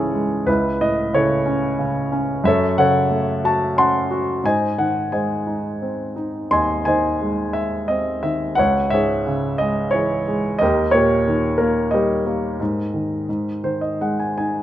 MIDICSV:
0, 0, Header, 1, 2, 480
1, 0, Start_track
1, 0, Tempo, 662983
1, 342, Time_signature, 3, 2, 24, 8
1, 3212, Tempo, 689655
1, 6572, Tempo, 668151
1, 9452, Tempo, 719424
1, 10355, End_track
2, 0, Start_track
2, 0, Title_t, "Grand piano"
2, 0, Program_c, 0, 0
2, 0, Control_c, 0, 64, 127
2, 0, Note_on_c, 0, 37, 46
2, 0, Note_on_c, 0, 44, 40
2, 0, Note_on_c, 0, 49, 43
2, 0, Note_on_c, 0, 52, 41
2, 0, Note_on_c, 0, 61, 47
2, 0, Note_on_c, 0, 64, 45
2, 0, Note_on_c, 0, 68, 60
2, 0, Note_on_c, 0, 69, 59
2, 0, Note_on_c, 0, 73, 80
2, 0, Note_on_c, 0, 75, 73
2, 95, Note_on_c, 0, 56, 46
2, 312, Note_off_c, 0, 64, 0
2, 313, Note_off_c, 0, 37, 0
2, 313, Note_off_c, 0, 49, 0
2, 314, Note_off_c, 0, 61, 0
2, 330, Note_off_c, 0, 52, 0
2, 335, Note_off_c, 0, 56, 0
2, 335, Note_on_c, 0, 37, 55
2, 337, Note_on_c, 0, 71, 68
2, 349, Note_on_c, 0, 64, 52
2, 351, Note_off_c, 0, 68, 0
2, 353, Control_c, 0, 64, 0
2, 355, Note_off_c, 0, 44, 0
2, 355, Note_off_c, 0, 73, 0
2, 356, Note_off_c, 0, 75, 0
2, 358, Note_off_c, 0, 69, 0
2, 481, Control_c, 0, 64, 127
2, 587, Note_on_c, 0, 45, 45
2, 588, Note_on_c, 0, 75, 74
2, 591, Note_off_c, 0, 71, 0
2, 821, Note_on_c, 0, 49, 47
2, 828, Note_off_c, 0, 64, 0
2, 829, Note_on_c, 0, 73, 65
2, 833, Note_off_c, 0, 75, 0
2, 835, Note_on_c, 0, 69, 45
2, 839, Note_on_c, 0, 64, 46
2, 1053, Note_on_c, 0, 61, 50
2, 1285, Note_off_c, 0, 49, 0
2, 1296, Note_on_c, 0, 49, 48
2, 1508, Note_off_c, 0, 45, 0
2, 1509, Note_off_c, 0, 73, 0
2, 1512, Note_off_c, 0, 69, 0
2, 1514, Note_off_c, 0, 64, 0
2, 1524, Note_off_c, 0, 61, 0
2, 1535, Note_on_c, 0, 61, 55
2, 1740, Note_off_c, 0, 37, 0
2, 1757, Note_off_c, 0, 49, 0
2, 1765, Note_off_c, 0, 61, 0
2, 1765, Note_on_c, 0, 42, 65
2, 1776, Note_on_c, 0, 76, 81
2, 1782, Control_c, 0, 64, 0
2, 1789, Note_on_c, 0, 73, 56
2, 1790, Note_on_c, 0, 69, 57
2, 1888, Control_c, 0, 64, 127
2, 2011, Note_on_c, 0, 49, 49
2, 2012, Note_off_c, 0, 69, 0
2, 2013, Note_off_c, 0, 73, 0
2, 2013, Note_on_c, 0, 78, 80
2, 2019, Note_off_c, 0, 76, 0
2, 2023, Note_on_c, 0, 69, 55
2, 2024, Note_on_c, 0, 73, 56
2, 2247, Note_on_c, 0, 57, 49
2, 2493, Note_on_c, 0, 66, 50
2, 2499, Note_on_c, 0, 81, 74
2, 2506, Note_off_c, 0, 78, 0
2, 2706, Note_off_c, 0, 69, 0
2, 2707, Note_off_c, 0, 73, 0
2, 2724, Note_on_c, 0, 61, 46
2, 2728, Note_off_c, 0, 81, 0
2, 2738, Note_on_c, 0, 81, 53
2, 2738, Note_on_c, 0, 84, 82
2, 2739, Note_on_c, 0, 78, 57
2, 2940, Note_off_c, 0, 49, 0
2, 2963, Note_off_c, 0, 66, 0
2, 2974, Note_on_c, 0, 66, 49
2, 3180, Note_off_c, 0, 42, 0
2, 3183, Note_off_c, 0, 57, 0
2, 3189, Note_off_c, 0, 78, 0
2, 3189, Note_off_c, 0, 81, 0
2, 3196, Note_off_c, 0, 61, 0
2, 3208, Note_off_c, 0, 66, 0
2, 3213, Note_on_c, 0, 44, 54
2, 3222, Control_c, 0, 64, 0
2, 3225, Note_on_c, 0, 80, 75
2, 3229, Note_on_c, 0, 72, 53
2, 3229, Note_on_c, 0, 75, 54
2, 3231, Note_off_c, 0, 84, 0
2, 3349, Control_c, 0, 64, 127
2, 3452, Note_on_c, 0, 51, 41
2, 3455, Note_on_c, 0, 78, 63
2, 3463, Note_off_c, 0, 80, 0
2, 3682, Note_off_c, 0, 72, 0
2, 3684, Note_off_c, 0, 75, 0
2, 3688, Note_on_c, 0, 56, 43
2, 3690, Note_on_c, 0, 80, 56
2, 3693, Note_on_c, 0, 72, 43
2, 3694, Note_on_c, 0, 75, 41
2, 3697, Note_off_c, 0, 78, 0
2, 3930, Note_on_c, 0, 63, 42
2, 4174, Note_on_c, 0, 60, 36
2, 4390, Note_off_c, 0, 80, 0
2, 4391, Note_off_c, 0, 51, 0
2, 4392, Note_off_c, 0, 72, 0
2, 4393, Note_off_c, 0, 75, 0
2, 4401, Note_off_c, 0, 63, 0
2, 4412, Note_on_c, 0, 63, 40
2, 4632, Note_off_c, 0, 44, 0
2, 4633, Note_off_c, 0, 56, 0
2, 4654, Note_on_c, 0, 39, 50
2, 4655, Note_on_c, 0, 84, 74
2, 4665, Note_on_c, 0, 75, 55
2, 4665, Note_on_c, 0, 80, 55
2, 4883, Note_off_c, 0, 80, 0
2, 4893, Note_on_c, 0, 80, 73
2, 4899, Note_off_c, 0, 75, 0
2, 4902, Note_on_c, 0, 51, 44
2, 4907, Note_off_c, 0, 84, 0
2, 4909, Note_on_c, 0, 72, 51
2, 4910, Note_on_c, 0, 75, 55
2, 5119, Note_off_c, 0, 60, 0
2, 5144, Note_on_c, 0, 56, 42
2, 5357, Note_off_c, 0, 63, 0
2, 5368, Note_on_c, 0, 76, 64
2, 5398, Note_off_c, 0, 80, 0
2, 5598, Note_off_c, 0, 75, 0
2, 5601, Note_off_c, 0, 72, 0
2, 5608, Note_on_c, 0, 75, 64
2, 5619, Note_on_c, 0, 60, 42
2, 5623, Note_off_c, 0, 76, 0
2, 5833, Note_off_c, 0, 51, 0
2, 5851, Note_on_c, 0, 76, 65
2, 5854, Note_on_c, 0, 51, 45
2, 5860, Note_off_c, 0, 75, 0
2, 6067, Note_off_c, 0, 39, 0
2, 6069, Note_off_c, 0, 56, 0
2, 6078, Note_on_c, 0, 78, 77
2, 6080, Note_off_c, 0, 60, 0
2, 6087, Note_off_c, 0, 51, 0
2, 6092, Note_on_c, 0, 37, 55
2, 6100, Note_off_c, 0, 76, 0
2, 6104, Note_on_c, 0, 73, 53
2, 6108, Control_c, 0, 64, 0
2, 6212, Control_c, 0, 64, 127
2, 6308, Note_off_c, 0, 78, 0
2, 6322, Note_on_c, 0, 76, 80
2, 6333, Note_on_c, 0, 44, 44
2, 6337, Note_off_c, 0, 73, 0
2, 6346, Note_on_c, 0, 68, 51
2, 6348, Note_on_c, 0, 73, 56
2, 6573, Note_on_c, 0, 49, 45
2, 6801, Note_on_c, 0, 75, 73
2, 6822, Note_on_c, 0, 56, 47
2, 6826, Note_off_c, 0, 76, 0
2, 7023, Note_off_c, 0, 73, 0
2, 7034, Note_on_c, 0, 73, 72
2, 7036, Note_off_c, 0, 68, 0
2, 7058, Note_off_c, 0, 75, 0
2, 7058, Note_on_c, 0, 52, 45
2, 7064, Note_on_c, 0, 64, 49
2, 7065, Note_on_c, 0, 68, 50
2, 7268, Note_off_c, 0, 44, 0
2, 7290, Note_off_c, 0, 56, 0
2, 7301, Note_on_c, 0, 56, 52
2, 7497, Note_off_c, 0, 73, 0
2, 7506, Note_off_c, 0, 37, 0
2, 7509, Note_off_c, 0, 49, 0
2, 7512, Note_off_c, 0, 64, 0
2, 7512, Note_off_c, 0, 68, 0
2, 7521, Note_on_c, 0, 75, 81
2, 7523, Note_off_c, 0, 52, 0
2, 7532, Note_off_c, 0, 56, 0
2, 7541, Note_on_c, 0, 39, 57
2, 7547, Control_c, 0, 64, 0
2, 7547, Note_on_c, 0, 67, 59
2, 7553, Note_on_c, 0, 70, 55
2, 7689, Control_c, 0, 64, 127
2, 7757, Note_on_c, 0, 73, 79
2, 7769, Note_off_c, 0, 67, 0
2, 7771, Note_off_c, 0, 70, 0
2, 7774, Note_on_c, 0, 46, 49
2, 7776, Note_off_c, 0, 75, 0
2, 7780, Note_on_c, 0, 67, 52
2, 7781, Note_on_c, 0, 70, 51
2, 8018, Note_on_c, 0, 51, 50
2, 8223, Note_off_c, 0, 70, 0
2, 8234, Note_on_c, 0, 70, 64
2, 8254, Note_off_c, 0, 73, 0
2, 8254, Note_on_c, 0, 58, 52
2, 8462, Note_off_c, 0, 67, 0
2, 8464, Note_off_c, 0, 70, 0
2, 8472, Note_on_c, 0, 75, 62
2, 8491, Note_on_c, 0, 55, 49
2, 8494, Note_on_c, 0, 67, 47
2, 8497, Note_on_c, 0, 70, 47
2, 8698, Note_off_c, 0, 46, 0
2, 8714, Note_off_c, 0, 58, 0
2, 8725, Note_on_c, 0, 58, 51
2, 8939, Note_off_c, 0, 39, 0
2, 8940, Note_off_c, 0, 51, 0
2, 8953, Note_off_c, 0, 55, 0
2, 8957, Note_off_c, 0, 58, 0
2, 8968, Note_on_c, 0, 44, 58
2, 8976, Control_c, 0, 64, 0
2, 9096, Control_c, 0, 64, 127
2, 9212, Note_on_c, 0, 51, 44
2, 9442, Note_off_c, 0, 44, 0
2, 9451, Note_off_c, 0, 51, 0
2, 9462, Note_on_c, 0, 44, 52
2, 9463, Control_c, 0, 64, 0
2, 9580, Control_c, 0, 64, 127
2, 9695, Note_on_c, 0, 51, 43
2, 9697, Note_on_c, 0, 72, 51
2, 9803, Note_off_c, 0, 75, 0
2, 9807, Note_off_c, 0, 72, 0
2, 9813, Note_on_c, 0, 75, 48
2, 9911, Note_off_c, 0, 67, 0
2, 9913, Note_off_c, 0, 70, 0
2, 9927, Note_off_c, 0, 75, 0
2, 9946, Note_on_c, 0, 56, 37
2, 9946, Note_on_c, 0, 78, 48
2, 10054, Note_off_c, 0, 78, 0
2, 10068, Note_on_c, 0, 80, 51
2, 10175, Note_off_c, 0, 80, 0
2, 10188, Note_on_c, 0, 80, 51
2, 10190, Note_on_c, 0, 63, 43
2, 10355, Note_off_c, 0, 44, 0
2, 10355, Note_off_c, 0, 51, 0
2, 10355, Note_off_c, 0, 56, 0
2, 10355, Note_off_c, 0, 63, 0
2, 10355, Note_off_c, 0, 80, 0
2, 10355, End_track
0, 0, End_of_file